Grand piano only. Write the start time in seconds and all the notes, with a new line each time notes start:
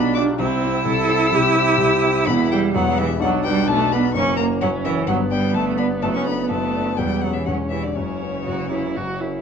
Already playing: B1 B2 D4 F4 G4
0.17 D4 F4 G4
0.40 C2 C3
0.63 C4 E4 G4
0.86 C2 C3
1.08 C4 E4 G4
1.32 C2 C3
1.55 C4 E4 G4
1.78 C2 C3
2.03 C4 E4 G4
2.27 E1 E2
2.50 B3 E4 G4
2.74 E1 E2
2.97 B3 E4 G4
3.20 B1 B2
3.45 D4 F#4 B4
3.68 B1 B2
3.91 D4 F#4 B4
4.14 F#1 F#2
4.38 C#4 F#4 A#4
4.62 F#1 F#2
4.85 C#4 F#4 A#4
5.07 G1 G2
5.30 B3 D4 D5
5.53 G1 G2
5.78 B3 D4 D5
6.02 F#1 F#2
6.26 A3 D4 D5
6.50 F#1 F#2
6.74 A3 D4 D5
6.98 E1 E2
7.23 C#4 G4 C#5
7.47 E1 E2
7.71 C#4 G4 C#5
7.96 F#1 F#2
8.22 C#4 F#4 B4
8.47 F#1 F#2
8.71 C#4 F#4 B4
8.96 F#1 F#2
9.21 C#4 F#4 A#4